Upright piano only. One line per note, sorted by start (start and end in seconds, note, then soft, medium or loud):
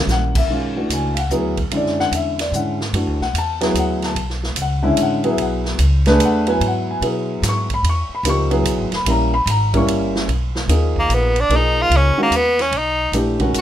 0.00 0.41 G3 medium
0.00 0.42 A#3 medium
0.00 0.42 C#4 medium
0.00 0.42 E4 medium
0.12 0.36 F#5 medium
0.37 0.50 E5 medium
0.50 0.74 D#3 soft
0.50 0.74 G#3 soft
0.50 0.74 C#4 soft
0.50 0.75 F4 medium
0.76 1.12 E3 medium
0.76 1.12 A3 medium
0.76 1.12 D4 soft
0.76 1.12 F#4 medium
0.93 1.18 G#5 medium
1.14 1.16 F5 medium
1.19 1.27 F#5 medium
1.31 1.55 F#3 medium
1.31 1.55 B3 medium
1.31 1.55 E4 medium
1.31 1.56 G#4 medium
1.72 2.34 D3 medium
1.72 2.34 G#3 soft
1.72 2.34 C#4 soft
1.72 2.34 E4 medium
1.77 2.00 D5 medium
2.00 2.13 F#5 loud
2.15 2.40 E5 medium
2.41 2.54 D5 medium
2.53 2.77 D3 soft
2.53 2.78 G#3 soft
2.53 2.78 C#4 soft
2.53 2.78 E4 medium
2.53 2.93 F#5 medium
2.94 3.18 E3 soft
2.94 3.18 A3 soft
2.94 3.19 D4 soft
2.94 3.19 F#4 medium
3.22 3.35 F#5 medium
3.38 3.63 A5 loud
3.61 4.14 F#3 medium
3.61 4.14 B3 medium
3.61 4.14 E4 medium
3.61 4.14 G#4 medium
3.61 3.76 G#5 medium
3.79 4.04 F#5 medium
4.05 4.42 A5 medium
4.62 4.86 F#5 medium
4.83 5.22 D3 medium
4.83 5.22 G#3 medium
4.83 5.22 C#4 medium
4.83 5.22 E4 medium
4.88 5.00 E5 medium
5.03 5.26 F#5 medium
5.24 5.77 F#3 medium
5.24 5.77 B3 medium
5.24 5.77 E4 medium
5.24 5.77 G#4 medium
5.29 5.41 E5 medium
5.42 5.66 F#5 medium
6.07 6.45 A3 loud
6.07 6.45 D4 medium
6.07 6.45 G#4 medium
6.07 6.45 B4 loud
6.07 6.22 G#5 medium
6.25 6.49 F#5 medium
6.47 6.99 F#3 medium
6.47 7.00 B3 medium
6.47 7.00 E4 medium
6.47 7.00 B4 medium
6.47 6.63 G#5 loud
6.68 6.91 F#5 medium
6.91 7.03 G#5 medium
7.02 7.64 F#3 medium
7.02 7.65 B3 medium
7.02 7.65 E4 medium
7.02 7.65 G#4 medium
7.49 7.72 C#6 medium
7.74 7.86 B5 medium
7.89 8.13 C#6 medium
8.15 8.26 B5 medium
8.25 8.49 F3 medium
8.25 8.49 A#3 medium
8.25 8.49 D#4 medium
8.25 8.49 G4 medium
8.30 8.53 C#6 loud
8.51 8.87 F#3 medium
8.51 8.87 B3 medium
8.51 8.87 E4 medium
8.51 8.87 G#4 medium
8.95 9.07 B5 medium
9.06 9.30 G3 medium
9.06 9.30 A#3 medium
9.06 9.30 C#4 medium
9.06 9.31 E4 medium
9.10 9.34 A#5 medium
9.34 9.47 B5 loud
9.50 9.74 A#5 medium
9.73 10.26 G3 medium
9.73 10.26 A#3 medium
9.73 10.26 C#4 medium
9.73 10.26 E4 medium
9.73 9.85 C#6 medium
10.69 11.31 F3 medium
10.69 11.31 A#3 medium
10.69 11.32 D#4 medium
10.69 11.32 G#4 medium
11.50 12.13 F3 medium
11.50 12.13 A#3 medium
11.50 12.13 D#4 medium
11.50 12.13 G#4 medium
12.18 12.31 D#3 medium
12.18 12.31 G#3 medium
12.18 12.31 C#4 medium
12.18 12.31 F#4 medium
13.14 13.38 E3 medium
13.14 13.38 A3 medium
13.14 13.38 D4 medium
13.14 13.39 G4 medium
13.40 13.61 D#3 medium
13.40 13.61 G#3 medium
13.40 13.61 C#4 medium
13.40 13.61 F#4 medium